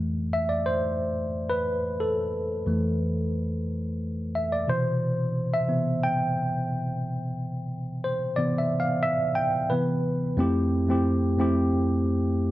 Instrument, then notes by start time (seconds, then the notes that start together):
tine electric piano
Already playing: F2 E3 A3
0.33 E5
0.49 D5
0.66 C5
1.50 B4
2.00 A4
2.66 F2 E3 A3
4.35 E5
4.52 D5
4.67 B2 C3 E3 C5
5.54 E5
5.68 C3 E3 B3
6.04 G5
8.04 C5
8.36 C3 E3 B3 D5
8.58 E5
8.80 F5
9.03 E5
9.35 G5
9.70 C3 E3 B3 B4
10.37 F2 A3 C4 E4 G4
10.88 F2 A3 C4 E4 G4
11.38 F2 A3 C4 E4 G4